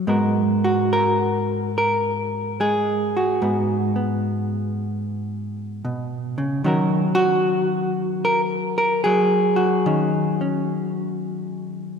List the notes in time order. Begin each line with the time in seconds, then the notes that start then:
0.07 G#2 G#3 B3 F#4 A#4
0.64 F#4
0.93 A#4
1.78 A#4
2.60 G#3 G#4
3.17 F#4
3.42 G#2 B3
3.96 B3
5.85 B2
6.38 C#3
6.64 D#3 F#3 C#4 F#4 A#4
7.15 F#4
8.25 A#4
8.78 A#4
9.04 F#3 G#4
9.56 F#4
9.86 D#3 C#4
10.41 C#4